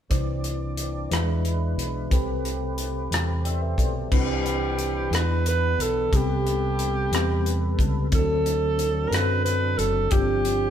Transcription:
0.09 C2 C3 E3 C4 D4 E4 B4 C5 D5, kick, closed hi-hat
0.44 closed hi-hat
0.77 closed hi-hat
1.11 E2 E3 G#3 D4 E4 G#4 B4, cross-stick, closed hi-hat
1.45 closed hi-hat
1.77 B1, closed hi-hat
2.10 C2 C3 A3 C4 G4 A4 B4, kick, closed hi-hat
2.45 closed hi-hat
2.78 closed hi-hat
3.11 E2, cross-stick, closed hi-hat
3.45 C5 D5 E5 G5, closed hi-hat
3.62 A4 B4 C5 E5
3.78 B1 A4 D5, kick, closed hi-hat
3.94 G4 A4 C5
4.11 C2 C3 E3 C4 D4 E4 G4 B4, kick, crash
4.46 closed hi-hat
4.79 closed hi-hat
5.11 E2 E3 B3 D4 E4 F4 G#4 B4, closed hi-hat
5.15 B4, cross-stick
5.46 B4, closed hi-hat
5.78 B1 A4, closed hi-hat
6.11 C2 C3 G3 B3 C4 G4 A4 B4, kick, closed hi-hat
6.16 G4
6.47 closed hi-hat
6.79 closed hi-hat
7.11 E2 B3 C4 G4 B4, cross-stick, closed hi-hat
7.46 closed hi-hat
7.79 C#2, kick, closed hi-hat
8.12 D2 D3 F#3 C4 D4 E4 A4, kick, closed hi-hat
8.21 F#4
8.46 closed hi-hat
8.79 closed hi-hat
9.08 F#2 A#4
9.12 C4 D4 F#4 A4 B4, cross-stick, closed hi-hat
9.45 B4, closed hi-hat
9.78 F#1 A4, closed hi-hat
10.11 G1 G2 F3 B3 C4 D4 F4 G4, kick, closed hi-hat
10.18 C4
10.45 closed hi-hat

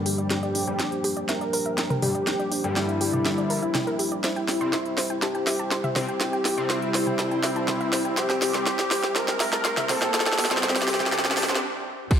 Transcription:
Already playing: G2 D3 F3 G3 A#3 D4 G4 C5 G5
0.06 G4, open hi-hat
0.18 D5, closed hi-hat
0.30 G4, snare, closed hi-hat
0.43 D5, closed hi-hat
0.55 D4, open hi-hat
0.67 G2 D3 G3 G5, closed hi-hat
0.80 G5, snare, closed hi-hat
0.92 closed hi-hat
1.04 G4, open hi-hat
1.17 D5, closed hi-hat
1.29 A#4 E5, snare, closed hi-hat
1.41 D5, closed hi-hat
1.53 A#4, open hi-hat
1.66 E5, closed hi-hat
1.78 G5, snare, closed hi-hat
1.90 A#4, closed hi-hat, mid tom
2.02 G2 D3 G3 G4, open hi-hat, mid tom
2.15 D5, closed hi-hat
2.27 G4, snare, closed hi-hat
2.39 D5, closed hi-hat
2.52 D4, open hi-hat
2.64 G2 D3 G3 G5, closed hi-hat
2.76 E4 G5, snare, closed hi-hat
2.89 closed hi-hat
3.01 G4, open hi-hat
3.13 D5, mid tom
3.25 E5, snare, closed hi-hat
3.38 D5, closed hi-hat
3.50 A#4, open hi-hat
3.62 E5, closed hi-hat
3.75 G5, snare, closed hi-hat, mid tom
3.87 A#4, closed hi-hat
3.99 G4, open hi-hat
4.12 D5, closed hi-hat
4.24 C4 E4 G4 C5, snare, closed hi-hat, riser
4.36 G5, closed hi-hat
4.48 G4, snare, open hi-hat
4.61 C3 G3 C4 C6, closed hi-hat
4.73 C6, snare, closed hi-hat
4.86 closed hi-hat
4.95 C5, snare, open hi-hat
5.10 G5, closed hi-hat
5.22 G4 E5 A5, snare, closed hi-hat
5.35 G5, closed hi-hat
5.47 E5, snare, open hi-hat
5.59 A5, closed hi-hat
5.71 C6, snare, closed hi-hat
5.84 E5, closed hi-hat, mid tom
5.96 C3 G3 C4 G4 C5, snare, open hi-hat, mid tom
6.08 G5, closed hi-hat
6.21 C5, snare, closed hi-hat
6.33 G5, closed hi-hat
6.45 G4, snare, open hi-hat
6.58 C3 G3 C4 C6
6.70 E4 C6, snare, closed hi-hat
6.82 closed hi-hat
6.94 C5, snare, open hi-hat
7.07 G5, mid tom
7.19 A5, snare, closed hi-hat
7.31 G5, closed hi-hat
7.43 E5, snare, open hi-hat
7.56 A5, closed hi-hat
7.68 C6, snare, closed hi-hat, mid tom
7.81 E5, closed hi-hat
7.93 C5, snare, open hi-hat
8.05 G5, closed hi-hat
8.17 G4 C5, snare, closed hi-hat
8.30 G5, snare, closed hi-hat
8.42 G4, snare, open hi-hat
8.54 C3 G3 C4 C6, snare, closed hi-hat
8.66 C6, snare, closed hi-hat
8.79 snare, closed hi-hat
8.91 C5, snare, open hi-hat
9.03 G5, snare
9.16 A#4 A5, snare, closed hi-hat
9.28 G5, snare, closed hi-hat
9.40 E5, snare, open hi-hat
9.53 A5, snare, closed hi-hat
9.65 C6, snare, closed hi-hat
9.77 E5, snare, closed hi-hat, mid tom
9.89 C3 G3 C4 A4 C5, snare, open hi-hat, mid tom
10.02 G5, snare, closed hi-hat
10.14 C5, snare, closed hi-hat
10.20 snare
10.26 G5, snare, closed hi-hat
10.32 snare
10.38 G4, snare, open hi-hat
10.45 snare
10.51 C3 G3 C4 C6, snare, closed hi-hat
10.57 snare
10.63 G4 C6, snare, closed hi-hat
10.69 snare
10.76 snare, open hi-hat
10.82 snare
10.88 C5, snare, open hi-hat
10.94 snare
11.00 G5, snare, closed hi-hat, mid tom
11.06 snare
11.12 A5, snare, closed hi-hat
11.19 snare
11.25 G5, snare, closed hi-hat
11.31 snare
11.37 A5, snare, open hi-hat
11.43 snare
11.49 C3 G3 C4 C6, snare, closed hi-hat
11.55 snare
12.11 F4 G4, kick, closed hi-hat, crash

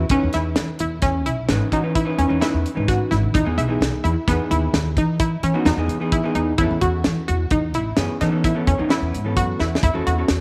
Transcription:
0.09 E2 E3 C#4 D#4 B4, kick, closed hi-hat
0.23 E2
0.32 E2 E4, snare, closed hi-hat
0.56 E3, snare, closed hi-hat
0.79 E2 E4, closed hi-hat
1.02 E2 C#4, kick, snare, closed hi-hat
1.26 B1 E4, closed hi-hat
1.49 G#1 E3 C#4 D#4 B4, snare, closed hi-hat
1.72 E3 C#4 D#4 F#4, kick, closed hi-hat
1.83 E3 C#4 D#4 B4
1.95 E4, kick, closed hi-hat
2.05 E3 C#4 D#4 B4
2.18 E2 C#4, closed hi-hat
2.28 E2 E3 C#4 D#4 B4
2.40 E3 C#4 D#4 E4 B4, snare, closed hi-hat
2.54 E2
2.66 closed hi-hat
2.75 G#1 E3 C#4 D#4 B4
2.88 F#4, kick, snare, closed hi-hat
3.11 G#1 E4, snare, closed hi-hat
3.23 E3
3.34 E2 D#4, kick, closed hi-hat
3.45 E2 E3 B3 D#4 G#4
3.58 B1 E4, closed hi-hat
3.68 E3 B3 D#4 G#4
3.81 B1, snare, closed hi-hat
4.04 E2 E4, closed hi-hat
4.28 E2 E3 B3 D#4 G#4, kick, snare, closed hi-hat
4.51 D#2 E4, closed hi-hat
4.73 D#2, snare, closed hi-hat
4.97 E3 D#4, kick, closed hi-hat
5.19 E4, kick, closed hi-hat
5.43 E3 C#4, closed hi-hat
5.54 E3 B3 D#4 F#4
5.65 E2 D#4, snare, closed hi-hat
5.76 E2 E3 B3 D#4 G#4
5.88 E3, closed hi-hat
6.00 E3 B3 D#4 G#4
6.12 E4, kick, closed hi-hat
6.23 E3 B3 D#4 G#4
6.35 E2 D#4, closed hi-hat
6.58 E2 E3 B3 C#4 E4 A4, kick, closed hi-hat
6.71 E2
6.81 E2 F#4, kick, closed hi-hat
7.04 E3, snare, closed hi-hat
7.28 E2 F#4, closed hi-hat
7.50 E2 D#4, kick, closed hi-hat
7.74 A1 E4, closed hi-hat
7.96 F#2 E3 B3 C#4 G#4, snare, closed hi-hat
8.20 E3 B3 C#4 D#4 A4, snare, closed hi-hat
8.31 E3 B3 C#4 A4
8.44 E4, kick, closed hi-hat
8.55 E3 B3 C#4 A4
8.67 E2 C#4, kick, closed hi-hat
8.78 E2 E3 B3 C#4 D#4
8.89 E3 B3 C#4 E4, snare, closed hi-hat
9.01 E2
9.14 G#2, closed hi-hat
9.24 E3 B3 C#4 A4
9.36 F#2 F#4, kick, closed hi-hat
9.60 E2 E4, snare
9.75 snare
9.83 E2 E4, kick, closed hi-hat
9.94 E2 C#4 F#4 A4
10.07 E2 F#4, closed hi-hat
10.18 C#4 F#4 A4
10.28 E2, snare, closed hi-hat

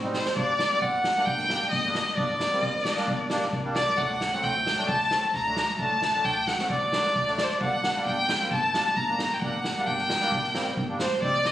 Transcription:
Already playing: A1 C4
0.02 G3 C4 D#4
0.14 C5, snare
0.25 snare
0.36 G1 G3 A#3 D4 D5, kick
0.59 snare
0.71 G3 A#3 C4
0.81 G1 F#5, kick
1.04 snare
1.15 G3 A#3 D4
1.25 G1 G5, kick
1.39 snare
1.50 G3 A#3 D4, snare
1.61 snare
1.71 G1 D#5, kick, snare
1.83 G3 A#3 D4, snare
1.95 snare
2.15 G1 G3 A#3 D4 D5, kick
2.40 snare
2.51 G3 A#3 C4
2.63 G1, kick
2.85 snare
2.96 G3 A#3 D4, snare
3.08 G1, kick
3.30 G3 A#3 D4, snare
3.42 snare
3.53 C2, kick
3.64 G3 A#3 D4
3.75 D5, snare
3.97 D2 F#3 A3 D4 F#5, kick
4.21 snare
4.32 F#3 A3 C4
4.43 D2 G5, kick
4.67 snare
4.77 F#3 A3 D4
4.89 D2 A5, kick
5.11 F#3 A3 C4, snare
5.34 D2 A#5, kick, snare
5.46 F#3 A3 D4
5.56 snare
5.79 D2 F#3 A3 D4 A5, kick
6.02 snare
6.13 F#3 A3 D4
6.25 D2 G5, kick
6.47 F#5, snare
6.58 F#3 A3 C4, snare
6.70 D2 D5, kick
6.93 F#3 A3 D4, snare
7.04 snare
7.16 D2, kick
7.26 F#3 A3 D4, snare
7.38 D5, snare
7.44 C5
7.50 D5
7.60 G1 G3 A#3 D4 F#5, kick
7.84 snare
7.94 G3 A#3 D4
8.06 G1 G5, kick
8.29 snare
8.38 G3 A#3 C4
8.51 G1 A5, kick
8.73 G3 A#3 D4, snare
8.86 snare
8.96 G1 A#5, kick
9.08 G3 A#3 D4
9.19 snare
9.34 G5
9.40 G1 G3 A#3 D4 F#5, kick
9.64 snare
9.76 G3 A#3 D4
9.87 G1 G5, kick
9.98 snare
10.10 snare
10.21 G3 A#3 D4, snare
10.32 G1, kick
10.43 snare
10.53 G3 A#3 C4, snare
10.77 G1, kick
10.88 G3 A#3 D4
10.99 C5, snare
11.22 C2 G3 C4 D#4 D5, kick
11.45 D#5, snare

